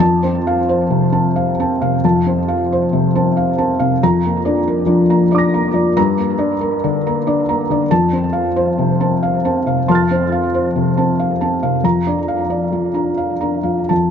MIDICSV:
0, 0, Header, 1, 2, 480
1, 0, Start_track
1, 0, Time_signature, 3, 2, 24, 8
1, 0, Key_signature, -1, "major"
1, 0, Tempo, 671892
1, 2398, Tempo, 649351
1, 6238, Tempo, 657174
1, 9118, Tempo, 708383
1, 10209, End_track
2, 0, Start_track
2, 0, Title_t, "Felt piano"
2, 0, Program_c, 0, 0
2, 0, Control_c, 0, 64, 127
2, 0, Note_on_c, 0, 41, 75
2, 0, Note_on_c, 0, 81, 86
2, 11, Control_c, 0, 64, 0
2, 143, Control_c, 0, 64, 127
2, 163, Note_on_c, 0, 72, 57
2, 171, Note_on_c, 0, 60, 49
2, 260, Note_off_c, 0, 81, 0
2, 336, Note_on_c, 0, 77, 62
2, 424, Note_off_c, 0, 72, 0
2, 428, Note_off_c, 0, 60, 0
2, 493, Note_on_c, 0, 72, 64
2, 590, Note_off_c, 0, 77, 0
2, 644, Note_on_c, 0, 48, 59
2, 747, Note_off_c, 0, 72, 0
2, 802, Note_on_c, 0, 60, 47
2, 804, Note_on_c, 0, 81, 55
2, 902, Note_off_c, 0, 48, 0
2, 971, Note_on_c, 0, 77, 54
2, 1061, Note_off_c, 0, 60, 0
2, 1062, Note_off_c, 0, 81, 0
2, 1140, Note_on_c, 0, 60, 53
2, 1141, Note_on_c, 0, 81, 57
2, 1227, Note_off_c, 0, 77, 0
2, 1297, Note_on_c, 0, 77, 57
2, 1299, Note_on_c, 0, 48, 44
2, 1393, Note_off_c, 0, 60, 0
2, 1394, Note_off_c, 0, 81, 0
2, 1423, Note_off_c, 0, 41, 0
2, 1461, Note_on_c, 0, 41, 77
2, 1462, Note_on_c, 0, 81, 66
2, 1465, Control_c, 0, 64, 0
2, 1550, Note_off_c, 0, 77, 0
2, 1551, Note_off_c, 0, 48, 0
2, 1563, Control_c, 0, 64, 127
2, 1616, Note_on_c, 0, 60, 48
2, 1619, Note_on_c, 0, 72, 53
2, 1709, Note_off_c, 0, 81, 0
2, 1774, Note_on_c, 0, 77, 58
2, 1864, Note_off_c, 0, 60, 0
2, 1865, Note_off_c, 0, 72, 0
2, 1946, Note_on_c, 0, 72, 55
2, 2022, Note_off_c, 0, 77, 0
2, 2092, Note_on_c, 0, 48, 57
2, 2188, Note_off_c, 0, 72, 0
2, 2253, Note_on_c, 0, 60, 52
2, 2254, Note_on_c, 0, 81, 52
2, 2339, Note_off_c, 0, 48, 0
2, 2406, Note_on_c, 0, 77, 54
2, 2500, Note_off_c, 0, 60, 0
2, 2500, Note_off_c, 0, 81, 0
2, 2565, Note_on_c, 0, 60, 50
2, 2565, Note_on_c, 0, 81, 55
2, 2657, Note_off_c, 0, 77, 0
2, 2722, Note_on_c, 0, 77, 58
2, 2725, Note_on_c, 0, 48, 49
2, 2816, Note_off_c, 0, 60, 0
2, 2816, Note_off_c, 0, 81, 0
2, 2851, Note_off_c, 0, 41, 0
2, 2879, Note_off_c, 0, 77, 0
2, 2880, Note_off_c, 0, 48, 0
2, 2888, Control_c, 0, 64, 0
2, 2898, Note_on_c, 0, 82, 83
2, 2899, Note_on_c, 0, 41, 72
2, 3013, Control_c, 0, 64, 127
2, 3061, Note_on_c, 0, 70, 51
2, 3062, Note_on_c, 0, 58, 48
2, 3145, Note_off_c, 0, 82, 0
2, 3207, Note_on_c, 0, 74, 57
2, 3214, Note_on_c, 0, 62, 54
2, 3309, Note_off_c, 0, 58, 0
2, 3309, Note_off_c, 0, 70, 0
2, 3373, Note_on_c, 0, 70, 58
2, 3464, Note_off_c, 0, 74, 0
2, 3468, Note_off_c, 0, 62, 0
2, 3511, Note_on_c, 0, 53, 60
2, 3514, Note_on_c, 0, 62, 55
2, 3627, Note_off_c, 0, 70, 0
2, 3686, Note_on_c, 0, 58, 55
2, 3687, Note_on_c, 0, 82, 57
2, 3776, Note_off_c, 0, 53, 0
2, 3778, Note_off_c, 0, 62, 0
2, 3830, Note_off_c, 0, 82, 0
2, 3841, Note_on_c, 0, 82, 43
2, 3848, Note_on_c, 0, 74, 56
2, 3853, Note_on_c, 0, 62, 55
2, 3870, Note_on_c, 0, 86, 43
2, 3896, Note_on_c, 0, 94, 43
2, 3944, Note_off_c, 0, 58, 0
2, 4001, Note_off_c, 0, 82, 0
2, 4011, Note_on_c, 0, 58, 47
2, 4012, Note_on_c, 0, 82, 55
2, 4104, Note_off_c, 0, 74, 0
2, 4107, Note_off_c, 0, 62, 0
2, 4155, Note_on_c, 0, 53, 48
2, 4158, Note_on_c, 0, 74, 55
2, 4266, Note_off_c, 0, 58, 0
2, 4266, Note_off_c, 0, 82, 0
2, 4310, Note_off_c, 0, 41, 0
2, 4310, Note_off_c, 0, 86, 0
2, 4322, Note_off_c, 0, 53, 0
2, 4323, Note_off_c, 0, 74, 0
2, 4323, Note_off_c, 0, 94, 0
2, 4327, Note_on_c, 0, 43, 78
2, 4328, Note_on_c, 0, 82, 87
2, 4339, Control_c, 0, 64, 0
2, 4467, Control_c, 0, 64, 127
2, 4482, Note_on_c, 0, 70, 55
2, 4489, Note_on_c, 0, 58, 48
2, 4585, Note_off_c, 0, 82, 0
2, 4635, Note_on_c, 0, 62, 56
2, 4638, Note_on_c, 0, 74, 58
2, 4743, Note_off_c, 0, 70, 0
2, 4747, Note_off_c, 0, 58, 0
2, 4803, Note_on_c, 0, 70, 58
2, 4898, Note_off_c, 0, 62, 0
2, 4899, Note_off_c, 0, 74, 0
2, 4971, Note_on_c, 0, 62, 57
2, 4973, Note_on_c, 0, 50, 58
2, 5058, Note_off_c, 0, 70, 0
2, 5141, Note_on_c, 0, 82, 52
2, 5144, Note_on_c, 0, 58, 51
2, 5219, Note_off_c, 0, 62, 0
2, 5220, Note_off_c, 0, 50, 0
2, 5288, Note_on_c, 0, 62, 55
2, 5293, Note_on_c, 0, 74, 60
2, 5383, Note_off_c, 0, 82, 0
2, 5385, Note_off_c, 0, 58, 0
2, 5453, Note_on_c, 0, 58, 52
2, 5453, Note_on_c, 0, 82, 58
2, 5539, Note_off_c, 0, 62, 0
2, 5541, Note_off_c, 0, 74, 0
2, 5609, Note_on_c, 0, 50, 50
2, 5617, Note_on_c, 0, 74, 55
2, 5703, Note_off_c, 0, 58, 0
2, 5703, Note_off_c, 0, 82, 0
2, 5729, Note_off_c, 0, 43, 0
2, 5763, Note_on_c, 0, 81, 87
2, 5765, Note_off_c, 0, 50, 0
2, 5769, Note_off_c, 0, 74, 0
2, 5769, Note_on_c, 0, 41, 68
2, 5772, Control_c, 0, 64, 0
2, 5881, Control_c, 0, 64, 127
2, 5924, Note_on_c, 0, 72, 49
2, 5925, Note_on_c, 0, 60, 50
2, 6016, Note_off_c, 0, 81, 0
2, 6073, Note_on_c, 0, 77, 57
2, 6175, Note_off_c, 0, 60, 0
2, 6175, Note_off_c, 0, 72, 0
2, 6247, Note_on_c, 0, 72, 60
2, 6328, Note_off_c, 0, 77, 0
2, 6408, Note_on_c, 0, 48, 54
2, 6496, Note_off_c, 0, 72, 0
2, 6566, Note_on_c, 0, 60, 48
2, 6570, Note_on_c, 0, 81, 54
2, 6660, Note_off_c, 0, 48, 0
2, 6731, Note_on_c, 0, 77, 55
2, 6821, Note_off_c, 0, 60, 0
2, 6822, Note_off_c, 0, 81, 0
2, 6893, Note_on_c, 0, 81, 51
2, 6896, Note_on_c, 0, 60, 52
2, 6981, Note_off_c, 0, 77, 0
2, 7049, Note_on_c, 0, 48, 44
2, 7055, Note_on_c, 0, 77, 52
2, 7139, Note_off_c, 0, 81, 0
2, 7140, Note_off_c, 0, 60, 0
2, 7170, Note_off_c, 0, 41, 0
2, 7206, Control_c, 0, 64, 0
2, 7211, Note_on_c, 0, 84, 47
2, 7212, Note_on_c, 0, 81, 64
2, 7219, Note_on_c, 0, 41, 74
2, 7233, Note_on_c, 0, 89, 46
2, 7259, Note_on_c, 0, 93, 47
2, 7294, Note_off_c, 0, 48, 0
2, 7297, Note_off_c, 0, 77, 0
2, 7335, Control_c, 0, 64, 127
2, 7375, Note_on_c, 0, 60, 44
2, 7379, Note_on_c, 0, 72, 51
2, 7457, Note_off_c, 0, 81, 0
2, 7530, Note_on_c, 0, 77, 51
2, 7623, Note_off_c, 0, 60, 0
2, 7625, Note_off_c, 0, 72, 0
2, 7692, Note_on_c, 0, 72, 54
2, 7784, Note_off_c, 0, 77, 0
2, 7850, Note_on_c, 0, 48, 51
2, 7943, Note_off_c, 0, 72, 0
2, 8007, Note_on_c, 0, 81, 55
2, 8012, Note_on_c, 0, 60, 49
2, 8099, Note_off_c, 0, 48, 0
2, 8169, Note_on_c, 0, 77, 51
2, 8256, Note_off_c, 0, 81, 0
2, 8259, Note_off_c, 0, 60, 0
2, 8326, Note_on_c, 0, 81, 53
2, 8331, Note_on_c, 0, 60, 47
2, 8417, Note_off_c, 0, 77, 0
2, 8485, Note_on_c, 0, 77, 49
2, 8486, Note_on_c, 0, 48, 43
2, 8576, Note_off_c, 0, 81, 0
2, 8579, Note_off_c, 0, 60, 0
2, 8614, Note_off_c, 0, 84, 0
2, 8618, Note_off_c, 0, 41, 0
2, 8625, Note_off_c, 0, 89, 0
2, 8638, Note_off_c, 0, 93, 0
2, 8638, Note_on_c, 0, 41, 63
2, 8640, Note_off_c, 0, 48, 0
2, 8640, Note_off_c, 0, 77, 0
2, 8644, Note_on_c, 0, 82, 76
2, 8649, Control_c, 0, 64, 0
2, 8747, Control_c, 0, 64, 127
2, 8807, Note_on_c, 0, 74, 45
2, 8809, Note_on_c, 0, 62, 38
2, 8895, Note_off_c, 0, 82, 0
2, 8963, Note_on_c, 0, 77, 49
2, 9058, Note_off_c, 0, 74, 0
2, 9059, Note_off_c, 0, 62, 0
2, 9121, Note_on_c, 0, 74, 47
2, 9212, Note_off_c, 0, 77, 0
2, 9274, Note_on_c, 0, 53, 44
2, 9365, Note_off_c, 0, 74, 0
2, 9418, Note_on_c, 0, 62, 41
2, 9424, Note_on_c, 0, 82, 42
2, 9523, Note_off_c, 0, 53, 0
2, 9579, Note_on_c, 0, 77, 44
2, 9676, Note_off_c, 0, 62, 0
2, 9679, Note_off_c, 0, 82, 0
2, 9736, Note_on_c, 0, 82, 46
2, 9744, Note_on_c, 0, 62, 40
2, 9838, Note_off_c, 0, 77, 0
2, 9889, Note_on_c, 0, 77, 39
2, 9890, Note_on_c, 0, 53, 35
2, 10000, Note_off_c, 0, 82, 0
2, 10004, Note_off_c, 0, 62, 0
2, 10045, Note_off_c, 0, 41, 0
2, 10063, Note_off_c, 0, 53, 0
2, 10063, Note_off_c, 0, 77, 0
2, 10064, Note_on_c, 0, 81, 65
2, 10073, Note_on_c, 0, 41, 53
2, 10086, Control_c, 0, 64, 0
2, 10209, Note_off_c, 0, 41, 0
2, 10209, Note_off_c, 0, 81, 0
2, 10209, End_track
0, 0, End_of_file